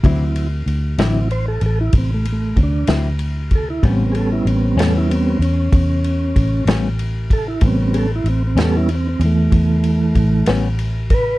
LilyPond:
<<
  \new Staff \with { instrumentName = "Tonewheel organ" } { \time 12/8 \key a \mixolydian \tempo 4. = 63 r2 c''16 a'16 a'16 e'16 c'16 a16 a8 <cis' d'>8 r4 a'16 e'16 | c'16 c'16 <gis' a'>16 e'16 c'16 c'16 a'16 e'16 c'16 c'16 cis'2 r4 a'16 e'16 | c'16 c'16 <gis' a'>16 e'16 c'16 c'16 a'16 e'16 c'16 c'16 <e a>2 r4 <bes' b'>8 | }
  \new Staff \with { instrumentName = "Tonewheel organ" } { \time 12/8 \key a \mixolydian <fis c' e'>8 r4 <fis c' e'>8 r1 | <g b cis'>2 <g b cis'>8 r2. r8 | <g b cis'>8 r4 <g b cis'>8 r1 | }
  \new Staff \with { instrumentName = "Clean electric guitar" } { \time 12/8 \key a \mixolydian <d fis c' e'>8 r4 <d fis c' e'>8 r2 r8 <d fis c' e'>8 r4 | <a, g b cis'>8 r4 <a, g b cis'>8 r2 r8 <a, g b cis'>8 r4 | r4. <a, g b cis'>8 r2 r8 <a, g b cis'>8 r4 | }
  \new Staff \with { instrumentName = "Fingered electric bass" } { \clef bass \time 12/8 \key a \mixolydian d,4 d,8 a,,4 a,,8 a,,4 d,8 d,4. | a,,4 a,,8 e,4 e,8 e,4 a,,8 a,,4. | a,,4 a,,8 e,4 e,8 e,4 a,,8 a,,4. | }
  \new DrumStaff \with { instrumentName = "Drums" } \drummode { \time 12/8 <bd cymr>8 cymr8 cymr8 <cymr sn>8 cymr8 cymr8 <bd cymr>8 cymr8 <bd cymr>8 <cymr sn>8 cymr8 <bd cymr>8 | <bd cymr>8 cymr8 cymr8 <cymr sn>8 cymr8 cymr8 <bd cymr>8 cymr8 <bd cymr>8 <cymr sn>8 cymr8 <bd cymr>8 | <bd cymr>8 cymr8 cymr8 <cymr sn>8 cymr8 cymr8 <bd cymr>8 cymr8 <bd cymr>8 <cymr sn>8 cymr8 <bd cymr>8 | }
>>